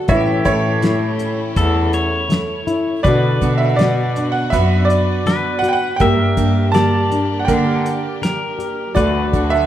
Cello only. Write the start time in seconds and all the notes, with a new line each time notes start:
0.08 A2
0.46 A2
1.56 E2
3.04 B2
3.42 B2
4.52 F#2
6.01 G2
6.37 G2
7.48 D3
8.96 D2
9.33 D2